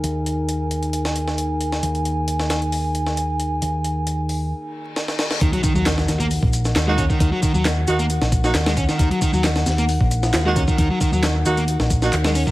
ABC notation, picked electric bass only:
X:1
M:4/4
L:1/16
Q:1/4=134
K:Ebm
V:1 name="Picked electric bass" clef=bass
E,,16 | E,,16 | E,,8 z8 | E,, z2 E,,3 E,,3 B,,,3 E,,3 z |
E,, z2 E,,3 E,,3 B,,,3 E,,3 z | E,, z2 E,,3 E,,3 B,,,3 E,,3 z | E,, z2 E,,3 E,,3 B,,,3 E,,3 z |]